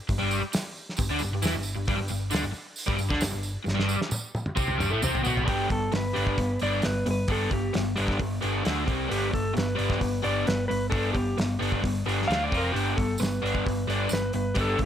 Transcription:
0.08 G1 G2, kick, open hi-hat, tambourine
0.18 G1 G2 G3
0.31 tambourine
0.42 muted overdriven electric guitar stroke, muted picked electric bass stroke
0.53 muted overdriven electric guitar stroke, muted picked electric bass stroke, snare, open hi-hat, tambourine
0.76 tambourine
0.89 snare
0.97 G1 G2, kick, open hi-hat, tambourine
1.10 D2 D3 D4
1.19 G1 G2, tambourine
1.32 G1 G2
1.42 E2 E3 E4, snare, open hi-hat, tambourine
1.53 G1 G2
1.63 tambourine
1.75 G1 G2
1.85 G1 G2 G3, kick, open hi-hat, tambourine
1.97 G1 G2
2.08 G1 G2, tambourine
2.30 D2 D3 D4, open hi-hat, tambourine
2.35 snare
2.42 G1 G2
2.53 muted overdriven electric guitar stroke, muted picked electric bass stroke, tambourine
2.76 open hi-hat, tambourine
2.87 G1 G2 G3, kick
2.98 G1 G2, tambourine
3.09 D2 D3 D4, kick, snare
3.20 G1 G2, snare, open hi-hat, tambourine
3.31 G1 G2
3.43 tambourine
3.64 G1 G2, snare, tambourine
3.74 G1 G2 G3
3.80 snare
3.89 tambourine
3.98 muted overdriven electric guitar stroke, muted picked electric bass stroke, snare
4.09 muted overdriven electric guitar stroke, muted picked electric bass stroke, high tom, tambourine
4.35 high tom, tambourine
4.46 mid tom
4.56 C2 C3 C4, kick, tambourine
4.68 mid tom
4.78 G1 G2 G3, mid tom, tambourine
4.89 A1 A2 A3
5.02 C2 C3 C4, mid tom, tambourine
5.15 floor tom
5.23 B1 B2 B3, floor tom, tambourine
5.37 floor tom
5.44 G1 G3 B3 D4, kick
5.49 G4, open hi-hat
5.69 G1 G3 B3 A4, kick, open hi-hat
5.92 G1 G3 B3, snare, open hi-hat
5.96 B4
6.13 G1 G3 B3 D4, open hi-hat
6.27 kick
6.38 G1 G3 B3, kick, open hi-hat
6.59 G1 G3 B3 D4 D5, open hi-hat
6.82 G1 G3 B3 B4, snare, open hi-hat
7.06 G1 G3 B3, open hi-hat
7.11 B4
7.28 G1 G3 B3 D4 A4, kick, open hi-hat
7.51 G1 G3 B3 G4, kick, open hi-hat
7.73 G1 G3 B3, snare, open hi-hat
7.96 G1 G3 B3 D4, open hi-hat
8.08 kick, snare
8.20 G1 G3 B3, kick, open hi-hat
8.41 G1 G3 B3 D4, open hi-hat
8.63 D2 D3 A3 D4, snare, open hi-hat
8.85 C2 C3 G3 C4, kick, open hi-hat
9.08 G1 G3 B3 D4 G4, open hi-hat
9.30 G3 B3
9.34 G1 A4, kick, open hi-hat
9.54 G1 G3 B3 B4, open hi-hat
9.58 snare
9.75 G1 G3 B3 D4, open hi-hat
9.90 kick, snare
9.98 G1 G3 B3, kick, open hi-hat
10.22 G1 G3 B3 D4 D5, open hi-hat
10.46 G1 G3 B3 B4, snare, open hi-hat
10.68 G1 G3 B3 B4, open hi-hat
10.90 G1 G3 B3 D4 A4, kick, open hi-hat
11.13 G1 G3 B3 G4, kick, open hi-hat
11.37 G1 G3 B3, snare, open hi-hat
11.59 G1 G3 B3 D4, open hi-hat
11.72 kick
11.82 G1 G3 B3, kick, open hi-hat
12.06 G1 G3 B3 D4, open hi-hat
12.22 snare
12.28 D2 D3 A3 D4 F5, open hi-hat
12.32 snare
12.44 D5
12.50 F1 F3 C4 F4, kick
12.54 A#4, open hi-hat
12.73 G1 G3 B3 D4 G4, open hi-hat
12.96 G1 G3 B3 A4, kick, open hi-hat
13.18 G1 G3 B3 B4, open hi-hat, tambourine
13.23 snare
13.42 G1 G3 B3 D4, open hi-hat
13.55 kick
13.66 G1 G3 B3, kick, open hi-hat
13.87 G1 G3 B3 D4 D5, open hi-hat
14.09 G1 G3 B3, open hi-hat, tambourine
14.13 B4, snare
14.33 G1 G3 B3 B4, open hi-hat
14.55 G1 G3 B3 D4, kick, open hi-hat
14.61 A4
14.78 G1 G3 B3, kick, open hi-hat

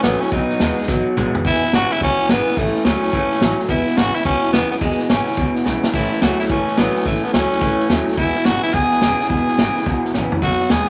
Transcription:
0.03 A1 A2 E3 F#3 A3 B3 C#4 E4, snare, hi-hat pedal
0.21 C#4 E4, snare
0.25 A3, snare
0.32 B1 B2 F#3 B3 D#4, kick, snare
0.36 F#4
0.50 B3 D#4 F#4, snare
0.60 D#2 B2 F#3 G#3 B3 D#4 F#4, snare, hi-hat pedal
0.78 D#4 F#4, snare
0.83 snare
0.88 A1 B2 F#3 B3 D#4 F#4, kick, snare
1.06 B3 D#4 F#4
1.16 B1 B2 F#3 G#3 B3 D#4 F#4, hi-hat pedal, mid tom
1.33 B3 D#4 F#4, muted upright bass stroke, floor tom
1.45 E1 E2 B2 E3 G#3 B3 E4, kick, snare
1.54 snare
1.62 E3 G#3 B3 E4, snare
1.73 G#1 E2 B2 C#3 E3 G#3 B3 E4 F#4, snare, hi-hat pedal
1.90 E3 G#3 B3 E4, snare
1.96 snare
2.01 C#2 E2 B2 E3 G#3 B3 C#4 E4, kick, snare
2.18 E3 G#3 B3 E4, muted upright bass stroke, snare
2.29 G#1 E2 B2 C#3 E3 G#3 B3 E4, snare, hi-hat pedal
2.46 E3 G#3 B3 E4, muted upright bass stroke, snare
2.51 snare
2.57 A1 A2 E3 A3 C#4 E4, kick, snare
2.66 snare
2.74 A3 C#4 E4, snare
2.84 C#2 A2 E3 F#3 A3 C#4 E4, snare, hi-hat pedal
3.01 A3 C#4 E4, muted upright bass stroke, snare
3.08 E3, snare
3.13 F#1 A2 A3 C#4 E4, kick, snare
3.29 A3 C#4 E4, muted upright bass stroke, snare
3.39 A1 A2 E3 F#3 A3 C#4 E4, snare, hi-hat pedal
3.57 A3 C#4 E4, snare
3.64 E2 B2, snare
3.68 E1 E3 G#3 B3 E4, kick, snare
3.85 E3 G#3 B3 E4, muted upright bass stroke, snare
3.95 G#1 E2 B2 C#3 E3 G#3 B3 E4 F#4, snare, hi-hat pedal
4.13 E3 G#3 B3 E4, snare
4.20 E3, snare
4.25 C#2 E2 B2 G#3 B3 C#4 E4, kick, snare
4.41 E3 G#3 B3 E4, muted upright bass stroke, snare
4.51 E1 E2 B2 C#3 E3 G#3 B3 E4, snare, hi-hat pedal
4.69 E3 G#3 B3 E4, muted upright bass stroke, snare
4.76 E2 B2, snare
4.80 E1 E3 G#3 B3 E4, kick, snare
4.90 snare
4.98 E3 G#3 B3 E4, muted upright bass stroke, snare
5.09 G#1 E2 B2 C#3 E3 G#3 B3 C#4 E4, snare, hi-hat pedal
5.26 E3 G#3 B3 E4, snare
5.32 E3, snare
5.37 C#2 E2 B2 G#3 B3 E4, kick, snare
5.54 E3 G#3 B3 E4, snare
5.64 B1 E2 B2 C#3 E3 G#3 B3 E4, snare, hi-hat pedal
5.82 E3 G#3 B3 E4, muted upright bass stroke, snare
5.93 A1 A2 E3 A3 C#4 E4, kick, snare, crash
6.10 A3 C#4 E4, snare
6.21 C#2 A2 E3 F#3 A3 C#4 E4 F#4, snare, hi-hat pedal
6.39 A3 C#4 E4, muted upright bass stroke, snare
6.45 snare
6.49 F#1 A2 E3 A3 C#4 E4, kick, snare
6.67 A3 C#4 E4, snare
6.77 A1 A2 E3 F#3 A3 B3 C#4 E4, snare, hi-hat pedal
6.95 A3 C#4 E4, muted upright bass stroke, snare
7.01 snare
7.05 A1 A2 E3 A3 C#4 E4, kick, snare
7.15 snare
7.23 A3 B3 C#4 E4, snare
7.33 C#2 A2 E3 F#3 A3 C#4 E4, snare, hi-hat pedal
7.51 A3 C#4 E4, snare
7.56 E3, snare
7.61 F#1 A2 A3 C#4 E4, kick, snare
7.79 A3 C#4 E4, snare
7.89 D#2 A2 E3 F#3 A3 C#4 E4, snare, hi-hat pedal
8.05 A3 C#4 E4, snare
8.12 E2, snare
8.17 E1 B2 E3 G#3 B3 E4, kick, snare
8.35 E3 G#3 B3 E4, snare
8.45 G#1 E2 B2 C#3 E3 G#3 B3 E4 F#4, snare, hi-hat pedal
8.63 E3 G#3 B3 E4, muted upright bass stroke, snare
8.69 snare
8.73 C#2 E2 B2 E3 G#3 B3 E4 G#4, kick, snare
8.91 E3 G#3 B3 E4, muted upright bass stroke, snare
9.01 E1 E2 B2 C#3 E3 G#3 B3 E4, snare, hi-hat pedal
9.19 E3 G#3 B3 E4, snare
9.25 snare
9.29 E1 E2 B2 E3 G#3 B3 E4 G#4, kick, snare
9.47 E3 G#3 B3 E4, snare
9.57 G#1 E2 B2 C#3 E3 G#3 B3 E4, snare, hi-hat pedal
9.76 E3 G#3 B3 E4, snare
9.82 E3, snare
9.86 C#2 E2 B2 G#3 B3 E4, kick, snare
10.03 E3 G#3 B3 E4, muted upright bass stroke, snare
10.13 A1 E2 B2 C#3 E3 G#3 B3 E4, snare, hi-hat pedal
10.31 E3 G#3 B3 E4, muted upright bass stroke, floor tom
10.41 B1 B2 F#3 B3 D#4 F#4, kick, snare
10.51 snare
10.59 B3 D#4 F#4, snare
10.69 D#2 B2 F#3 G#3 B3 D#4 F#4 G#4, snare, hi-hat pedal

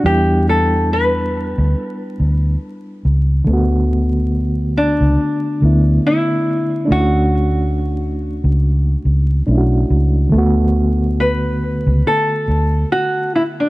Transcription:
0.00 G3 D4
0.05 E2 B3 G4
0.09 E4
0.49 A4
0.93 B4
1.58 D2
2.02 A4
2.20 D2
3.05 C#2
3.44 D2 D3 A3
3.50 B3 F#4
4.77 D4
5.01 C#2
5.61 D2 D3 A3 B3
5.65 E4
6.07 E4
6.85 A3 D4
6.91 D2 C#4 E4 F#4
7.00 F#4
8.44 C#2
9.05 C#2
9.47 B1 A3 C#4 D4
9.51 E4
9.58 F#4
9.90 C#2
10.29 D2 D3 A3
10.36 B3 F#4
11.20 B4
11.87 C#2
12.07 A4
12.48 D2
12.92 F#4
13.36 E4
13.60 D4

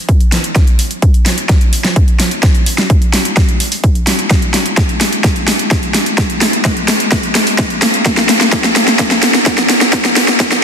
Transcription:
0.09 kick, closed hi-hat
0.20 closed hi-hat
0.32 snare, open hi-hat
0.44 closed hi-hat
0.55 kick, snare, closed hi-hat
0.67 closed hi-hat
0.79 open hi-hat
0.91 closed hi-hat
1.02 kick, closed hi-hat
1.14 closed hi-hat
1.26 snare, open hi-hat
1.38 closed hi-hat
1.49 kick, snare, closed hi-hat
1.61 closed hi-hat
1.73 open hi-hat
1.84 snare, closed hi-hat
1.96 kick, closed hi-hat
2.08 closed hi-hat
2.20 snare, open hi-hat
2.31 closed hi-hat
2.43 kick, snare, closed hi-hat
2.55 closed hi-hat
2.66 open hi-hat
2.78 snare, closed hi-hat
2.90 kick, closed hi-hat
3.02 closed hi-hat
3.13 snare, open hi-hat
3.25 closed hi-hat
3.37 kick, snare, closed hi-hat
3.49 closed hi-hat
3.60 open hi-hat
3.72 open hi-hat
3.84 kick, closed hi-hat
3.95 closed hi-hat
4.07 snare, open hi-hat
4.19 closed hi-hat
4.30 kick, snare, closed hi-hat
4.42 closed hi-hat
4.54 snare, open hi-hat
4.66 closed hi-hat
4.77 kick, snare, closed hi-hat
4.89 closed hi-hat
5.01 snare, open hi-hat
5.13 closed hi-hat
5.24 kick, snare, closed hi-hat
5.36 closed hi-hat
5.48 snare, open hi-hat
5.59 closed hi-hat
5.71 kick, snare, closed hi-hat
5.83 closed hi-hat
5.94 snare, open hi-hat
6.06 closed hi-hat
6.18 kick, snare, closed hi-hat
6.30 closed hi-hat
6.41 snare, open hi-hat
6.53 closed hi-hat
6.65 kick, snare, closed hi-hat
6.77 closed hi-hat
6.88 snare, open hi-hat
7.00 closed hi-hat
7.12 kick, snare, closed hi-hat
7.23 closed hi-hat
7.35 snare, open hi-hat
7.47 open hi-hat
7.58 kick, snare, closed hi-hat
7.70 closed hi-hat
7.82 snare, open hi-hat
7.94 closed hi-hat
8.06 kick, snare, closed hi-hat
8.17 snare, closed hi-hat
8.29 snare, open hi-hat
8.41 snare, closed hi-hat
8.52 kick, snare, closed hi-hat
8.64 snare, closed hi-hat
8.76 snare, open hi-hat
8.88 snare, closed hi-hat
8.99 kick, snare, closed hi-hat
9.11 snare, closed hi-hat
9.23 snare, open hi-hat
9.34 snare, closed hi-hat
9.46 kick, snare, closed hi-hat
9.58 snare, closed hi-hat
9.70 snare, open hi-hat
9.81 snare, closed hi-hat
9.93 kick, snare, closed hi-hat
10.05 snare, closed hi-hat
10.16 snare, open hi-hat
10.28 snare, closed hi-hat
10.40 kick, snare, closed hi-hat
10.52 snare, closed hi-hat

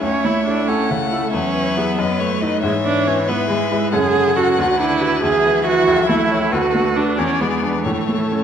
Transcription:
0.01 C#2 A3 C#4 C#5 E5
0.25 A3 E4
0.46 D4 E4 A4
0.67 A3 C#4 E4 A4 F#5
0.90 C#3 A3
1.12 E4 A4
1.33 E2 F#3 C#4 B4 E5
1.54 B3
1.77 B3 E4 G#4
1.98 F#2 B4 D#5
2.20 A3 B3 C#5
2.41 D#4 B4 D#5
2.62 G#2 E3 G#3 C#5 E5
2.85 B3 D4
3.07 C#4 E4 B4
3.28 G#3 B3 E4 B4 E5
3.50 G#3
3.72 E4 B4
3.92 F#2 C#3 G#4 A4 F#5
4.15 C#4
4.36 F#4 A4
4.57 D2 D3 B4
4.80 D4 E4
5.01 F#4 B4
5.23 D2 E3 G#4 E5
5.46 B3
5.66 E4 F#4 B4
5.88 C#2 A4
6.09 A3 E4
6.31 E4 C#5
6.52 D2 D3 F#4 B4
6.75 A3
6.96 D4 B4
7.18 E2 E3 C#4 G#4 D5
7.41 G#3 B3
7.63 D4 B4
7.85 A2 A3 A4 C#5
8.08 A3
8.32 C#4 C#5

